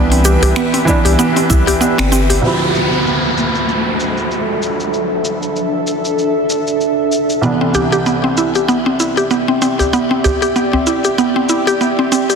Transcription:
Already playing: C2 E3 B3 D4 G4 B4 E5
0.11 C4, open hi-hat, cabasa
0.25 G4, cabasa
0.42 C2 G4, open hi-hat, udu, cabasa
0.56 B3, finger snap, cabasa
0.74 C4, open hi-hat, cabasa
0.85 E3 B3 E4, kick, cabasa
0.89 D4
1.05 C2 G4, open hi-hat, cabasa
1.19 B3, cabasa
1.36 C4, open hi-hat, cabasa
1.50 C2 E4, kick, cabasa
1.67 G4, open hi-hat, udu, cabasa
1.81 B3, cabasa
1.98 G1 C4, finger snap, open hi-hat, cabasa
2.12 C4, cabasa
2.30 G4, open hi-hat, udu, cabasa
2.42 D2 F3 C4 D4 E4 A4 E5, downlifter, cabasa
2.75 cabasa
2.93 cabasa
3.07 cabasa
3.38 cabasa
3.55 cabasa
3.69 cabasa
4.00 cabasa
4.17 cabasa
4.31 cabasa
4.62 cabasa
4.80 cabasa
4.94 cabasa
5.25 cabasa
5.43 cabasa
5.56 cabasa
5.87 cabasa
6.05 cabasa
6.19 cabasa
6.50 cabasa
6.67 cabasa
6.81 cabasa
7.12 cabasa
7.30 cabasa
7.41 C2 E3 B3 D4 G4 D5, cabasa
7.61 C4
7.74 G4, udu, cabasa
7.92 G4, cabasa
8.06 B3, cabasa
8.24 C4
8.37 E4, cabasa
8.55 G4, cabasa
8.68 B3, cabasa
8.86 C4
9.00 E4, cabasa
9.17 G4, cabasa
9.31 B3, cabasa
9.48 C4
9.62 C4, cabasa
9.79 G4, udu, cabasa
9.93 B3, cabasa
10.11 C4
10.24 G4, udu, cabasa
10.42 G4, cabasa
10.56 B3, cabasa
10.73 C4, udu
10.87 E4, cabasa
11.04 G4, cabasa
11.18 B3, cabasa
11.36 C4
11.49 E4, cabasa
11.67 G4, cabasa
11.81 B3, cabasa
11.99 C4
12.12 C4, cabasa
12.30 G4, cabasa

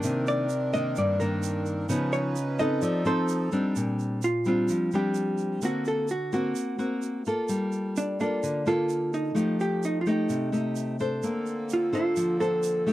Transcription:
Already playing: D#3 A#3 D4
0.02 C3 D#3 C4 D4 A#4, shaker
0.27 D5, shaker
0.49 shaker
0.73 D#3 A#3 D4 D#5, shaker
0.96 G2 D5, shaker
1.20 D#3 A#3 D4 A#4, shaker
1.43 shaker
1.66 shaker
1.88 C#3 F3 B3 C#4 D#4 B4, shaker
2.13 C#5, shaker
2.36 shaker
2.59 C4 D#4 A4 D#5, shaker
2.82 F3 A4 D5, shaker
3.05 C4 D#4 A4 C5, shaker
3.28 shaker
3.52 G3 C4 D4, shaker
3.76 A#2, shaker
3.99 shaker
4.22 F4, shaker
4.45 G3 C4 D4 F4, shaker
4.68 F3, shaker
4.91 G3 C4 D4 G4, shaker
5.14 shaker
5.38 shaker
5.62 D3 A#3 C4 F#4, shaker
5.85 A4, shaker
6.08 F#4, shaker
6.33 A#3 C4 F#4, shaker
6.56 shaker
6.78 A#3 C4 F#4, shaker
7.02 shaker
7.25 A#3 F4 A4, shaker
7.49 G3, shaker
7.72 shaker
7.96 D4, shaker
8.20 A#3 D4 F4 A4, shaker
8.43 D3, shaker
8.66 A#3 F4 A4, shaker
8.89 shaker
9.13 D#4, shaker
9.35 F3 A3 D#4 G4, shaker
9.60 G4, shaker
9.83 D#4, shaker
10.01 F4
10.06 A3 D#4 G4, shaker
10.29 C3, shaker
10.52 A3 D#4 G4, shaker
10.76 shaker
10.99 D4 A4 C5, shaker
11.22 D3 A#3 C4 A4, shaker
11.46 shaker
11.69 F4, shaker
11.92 D4 F4 A4 C5, shaker
12.16 F3, shaker
12.40 D4 A4 C5, shaker
12.63 shaker
12.86 A3 D#4 G4, shaker

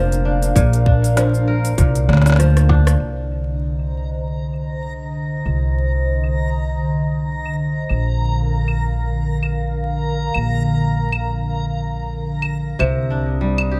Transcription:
Already playing: F1 A#2 F3 A#3 D4 A#4 F5
0.12 closed hi-hat, cabasa
0.25 D4
0.43 closed hi-hat, cabasa
0.56 A#1 A#2, kick, closed hi-hat, cabasa
0.73 closed hi-hat, cabasa
0.86 D4, kick
1.04 closed hi-hat, cabasa
1.17 F3, snare, closed hi-hat, cabasa
1.34 cabasa
1.47 A#4
1.65 closed hi-hat, cabasa
1.78 C2 A#2, kick, closed hi-hat, cabasa
1.95 closed hi-hat, cabasa
2.09 D2 A#3, snare
2.13 snare
2.17 snare
2.22 snare
2.26 snare, closed hi-hat, cabasa
2.30 snare
2.32 snare
2.36 F3, cross-stick, snare, closed hi-hat
2.40 cabasa
2.57 cross-stick, closed hi-hat, cabasa
2.69 D4, kick, cross-stick
2.87 cross-stick, closed hi-hat, cabasa
3.00 C2 D3 C5 D#5 A#5, claves
3.79 claves
4.53 claves
5.45 C2, claves
6.24 claves
7.45 claves
7.89 A#1 A#4 F5, claves
8.68 claves
9.43 claves
10.34 A#1, claves
11.12 claves
12.42 claves
12.79 C2 C3 D4 C5 D#6, claves
13.10 D4
13.41 G3
13.58 claves
13.71 G4

